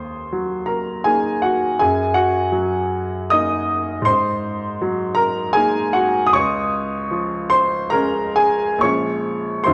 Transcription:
Already playing: D#2 C5 C6
0.32 F#3
0.66 A#4 A#5
1.04 A#3 D#4 G#4 G#5
1.42 F#4 F#5
1.79 F#2 G#4 G#5
2.14 F#4 F#5
2.52 F#3
3.30 A#3 D#4 D#5 D#6
4.02 G#2 C6
4.06 C5
4.81 F#3
5.15 A#4 A#5
5.53 A#3 D#4 G#4 G#5
5.93 F#4 F#5
6.27 D#6
6.33 C#2 C#5 C#6
7.11 F3
7.50 C5 C6
7.90 G#3 C#4 A#4 A#5
8.36 G#4 G#5
8.78 A#1 C#5 C#6
8.83 F3 G#3 C#4
9.64 F#2 D#3 F#3 D#4 C5 C6

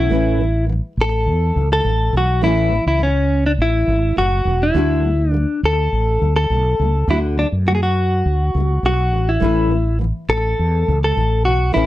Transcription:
Already playing: C#4 E4
0.10 A1 A2 E3 A3 C#4 E4
0.38 A2 E3
0.66 A2 E3
0.97 A1
1.01 A4
1.26 E2
1.54 C#2 A2 E3
1.73 A4
1.83 A1 A2 E3
2.13 B1 A2 E3
2.17 F#4
2.42 A1 A2 E3 A3 C#4 E4
2.70 A2 E3
2.86 C#2 E4
2.99 A2 E3
3.03 C#4
3.46 D4
3.58 A1 E4
3.86 G#1 A2 E3
4.16 F#1 A2 E3 F#4
4.45 E1 A2 E3
4.63 E4
4.74 D2 D3 A3 D4 F#4
5.02 D3 A3
5.31 D3 A3 D4
5.63 D2 A4
5.92 A1
6.19 D2 D3 A3
6.36 A4
6.50 B1 D3 A3
6.79 C#2 D3 A3
7.08 D2 D3 A3 D4 E4 F#4
7.38 D3 A3 D4
7.52 F#2
7.66 D3 A3 F#4
7.75 G#4
7.83 F#4
8.25 D2
8.54 C#2 D3 A3
8.83 B1 D3 A3 F#4
9.12 A1 D3 A3
9.29 E4
9.40 A1 A2 E3 A3 C#4 E4
9.69 A2 E3
9.99 A2 E3
10.29 A1 A4
10.59 E2
10.87 C#2 A2 E3
11.04 A4
11.15 A1 A2 E3
11.45 B1 A2 E3 F#4
11.72 A1 A2 E3 A3 C#4 E4

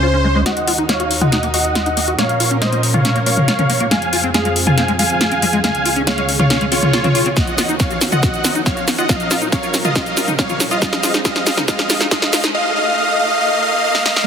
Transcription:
Already playing: C#2 C#3 C#4 G#4 C5
0.03 F4
0.14 C#4
0.24 G#3
0.35 G#3
0.46 D#2 D#3 D#4 F#4 D#5 F#5, snare, closed hi-hat, riser
0.57 closed hi-hat
0.67 F4, open hi-hat
0.78 D#4, closed hi-hat
0.89 A#3 C#5 F5, snare, closed hi-hat
1.00 F#4, closed hi-hat
1.11 open hi-hat
1.21 F4 D#5 F#5, closed hi-hat, mid tom
1.32 D#4, snare, closed hi-hat
1.43 A#3, closed hi-hat
1.54 F#4 D#5 F#5, open hi-hat
1.65 closed hi-hat
1.75 F4, snare, closed hi-hat
1.86 D#4, closed hi-hat
1.97 A#3, open hi-hat
2.08 F#4, closed hi-hat
2.18 A#2 F3 A#3 C#4 A#4 C#5 F5, snare, closed hi-hat
2.29 closed hi-hat
2.40 F4, open hi-hat
2.51 C#4, closed hi-hat
2.62 A#3 C5 D#5, snare, closed hi-hat
2.72 A#3, closed hi-hat
2.83 open hi-hat
2.94 F4 C#5 F5, closed hi-hat, mid tom
3.05 C#4, snare, closed hi-hat
3.16 A#3, closed hi-hat
3.26 A#3 C#5 F5, open hi-hat
3.37 mid tom
3.48 F4, snare, closed hi-hat
3.59 C#4, closed hi-hat, mid tom
3.70 A#3, open hi-hat
3.80 A#3, closed hi-hat
3.91 F2 F3 G#3 C4 G#4 F5 G#5, snare, closed hi-hat
4.02 closed hi-hat
4.13 F4, open hi-hat
4.23 C4, closed hi-hat
4.34 G#3 G#4 F5, snare, closed hi-hat
4.45 G#3, closed hi-hat
4.56 open hi-hat
4.67 F4 F5 G#5, closed hi-hat, mid tom
4.77 C4, snare, closed hi-hat
4.88 G#3, closed hi-hat
4.99 G#3 F5 G#5, open hi-hat
5.10 closed hi-hat
5.21 F4, snare, closed hi-hat
5.31 C4, closed hi-hat
5.42 G#3, open hi-hat
5.53 G#3, closed hi-hat
5.64 C#2 C#3 G#3 C#4 F5 G#5, snare, closed hi-hat
5.75 closed hi-hat
5.85 F4, open hi-hat
5.96 C#4, closed hi-hat
6.07 G#3 C#5 F5, snare, closed hi-hat
6.18 G#3, closed hi-hat
6.29 open hi-hat
6.39 F4 C#5 F5, mid tom
6.50 C#4, snare, closed hi-hat
6.61 G#3, closed hi-hat
6.72 C4 F4 C#5, open hi-hat
6.83 closed hi-hat, mid tom
6.93 F4, snare, closed hi-hat
7.04 C4, closed hi-hat, mid tom
7.15 F4, open hi-hat
7.26 C4, closed hi-hat
7.37 D#2 D#3 F#4 D#5 F#5, kick, snare, closed hi-hat, shaker
7.47 closed hi-hat, shaker
7.58 F4, snare, open hi-hat, shaker
7.69 D#4, closed hi-hat, shaker
7.80 A#3 C#5 F5, kick, snare, closed hi-hat, shaker
7.91 F#4, closed hi-hat, shaker
8.01 snare, open hi-hat, shaker
8.12 F4 D#5 F#5, closed hi-hat, mid tom, shaker
8.23 F#4, kick, snare, closed hi-hat, shaker
8.34 closed hi-hat, shaker
8.44 F4, snare, open hi-hat, shaker
8.55 D#4, closed hi-hat, shaker
8.66 A#3 C#5 F5, kick, snare, closed hi-hat, shaker
8.77 F#4, closed hi-hat, shaker
8.88 snare, open hi-hat, shaker
8.98 F4 D#5 F#5, closed hi-hat, shaker
9.09 A#2 F3 C#4 F4 A#4 F5, kick, snare, closed hi-hat, shaker
9.20 closed hi-hat, shaker
9.31 F4, snare, open hi-hat, shaker
9.42 D#4, closed hi-hat, shaker
9.52 A#3 C#5 F5, kick, snare, closed hi-hat, shaker
9.63 F4, closed hi-hat, shaker
9.74 snare, open hi-hat, shaker
9.85 F4 D#5 F5, mid tom, shaker
9.96 F4 D#5 F5, kick, snare, closed hi-hat, shaker
10.06 closed hi-hat, shaker
10.17 F4, snare, open hi-hat, shaker
10.28 D#4, closed hi-hat, mid tom, shaker
10.39 A#3 C#5 F5, kick, snare, closed hi-hat, shaker
10.49 F4, closed hi-hat, mid tom, shaker
10.60 snare, open hi-hat, shaker
10.71 F4 D#5 F5, closed hi-hat, shaker
10.82 F2 C4 F4 G#4 D#5 F5, kick, snare, closed hi-hat, shaker
10.93 snare, closed hi-hat, shaker
11.03 F4, snare, open hi-hat, shaker
11.14 D#4, snare, closed hi-hat, shaker
11.25 F4 D#5 F5, kick, snare, closed hi-hat, shaker
11.36 snare, closed hi-hat, shaker
11.47 F4, snare, open hi-hat, shaker
11.57 D#4, snare, closed hi-hat, mid tom, shaker
11.68 F4 D#5 F5, kick, snare, closed hi-hat, shaker
11.79 snare, closed hi-hat, shaker
11.90 F4, snare, open hi-hat, shaker
12.01 D#4, snare, closed hi-hat, shaker
12.11 F4 D#5 F5, kick, snare, closed hi-hat, shaker
12.22 snare, closed hi-hat, shaker
12.33 F4, snare, open hi-hat, shaker
12.44 D#4, snare, closed hi-hat, shaker
12.55 D#5 F5
12.76 D#5 F5
12.98 D#5 F5
13.19 D#5 F5
13.41 D#5 F5
13.62 D#5 F5
13.84 D#5 F5
13.95 snare
14.06 D#5 F5, snare
14.16 snare

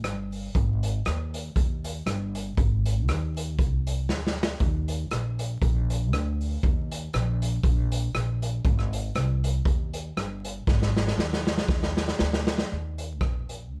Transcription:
0.04 G1, cross-stick, closed hi-hat
0.32 open hi-hat
0.55 G#1, kick, closed hi-hat
0.83 closed hi-hat
1.05 D#2, cross-stick, closed hi-hat
1.34 closed hi-hat
1.56 D#2, kick, closed hi-hat
1.84 closed hi-hat
2.06 G1, cross-stick, closed hi-hat
2.35 closed hi-hat
2.57 G#1, kick, closed hi-hat
2.85 closed hi-hat
3.08 D#2, cross-stick, closed hi-hat
3.37 closed hi-hat
3.59 C2, kick, closed hi-hat
3.87 closed hi-hat
4.09 D2, snare
4.27 snare
4.43 snare
4.60 D#2, kick, closed hi-hat
4.88 closed hi-hat
5.11 A#1, cross-stick, closed hi-hat
5.39 closed hi-hat
5.62 A#1, kick, closed hi-hat
5.90 closed hi-hat
6.12 D2, cross-stick, closed hi-hat
6.41 open hi-hat
6.63 D#2, kick, closed hi-hat
6.91 closed hi-hat
7.13 A#1, cross-stick, closed hi-hat
7.42 closed hi-hat
7.64 A#1, kick, closed hi-hat
7.92 closed hi-hat
8.15 A#1, cross-stick, closed hi-hat
8.42 closed hi-hat
8.65 G#1, kick, closed hi-hat
8.79 cross-stick
8.93 closed hi-hat
9.15 C2, cross-stick, closed hi-hat
9.44 closed hi-hat
9.65 D#2, kick, closed hi-hat
9.93 closed hi-hat
10.17 G1, cross-stick, closed hi-hat
10.44 closed hi-hat
10.67 G#1, kick, snare
10.82 snare
10.96 snare
11.08 snare
11.18 D#2, snare
11.33 snare
11.47 snare
11.58 snare
11.68 D#2, kick, snare
11.83 snare
11.97 snare
12.08 snare
12.19 D2, snare
12.33 snare
12.47 snare
12.58 snare
12.72 D#2
12.98 closed hi-hat
13.21 A#1, kick, cross-stick
13.49 closed hi-hat
13.72 D2

